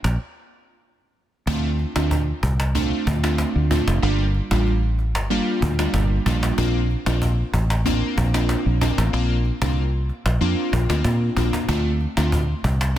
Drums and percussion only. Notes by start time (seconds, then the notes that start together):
0.04 cajon slap
1.47 cajon bass
1.79 cajon slap
1.96 cajon slap
2.11 cajon bass
2.43 cajon bass
2.60 cajon slap
2.75 cajon bass
3.07 cajon bass
3.24 cajon slap
3.38 cajon slap
3.71 cajon bass
3.88 cajon slap
4.03 cajon slap
4.35 cajon slap
4.51 cajon bass, cajon slap
4.66 cajon slap
4.99 cajon slap
5.15 cajon slap
5.31 cajon slap
5.62 cajon bass
5.79 cajon slap
5.94 cajon bass, cajon slap
6.26 cajon bass
6.43 cajon slap
6.58 cajon bass
6.90 cajon slap
7.06 cajon slap
7.22 cajon bass
7.54 cajon bass
7.70 cajon slap
7.86 cajon bass
8.18 cajon bass
8.34 cajon slap
8.49 cajon slap
8.81 cajon bass
8.98 cajon slap
9.13 cajon slap
9.45 cajon slap
9.62 cajon bass, cajon slap
9.77 cajon slap
10.09 cajon slap
10.26 cajon slap
10.41 cajon slap
10.73 cajon bass
10.90 cajon slap
11.04 cajon bass, cajon slap
11.37 cajon bass
11.53 cajon bass, cajon slap
11.69 cajon bass
12.01 cajon slap
12.17 cajon slap
12.32 cajon bass
12.64 cajon bass
12.81 cajon slap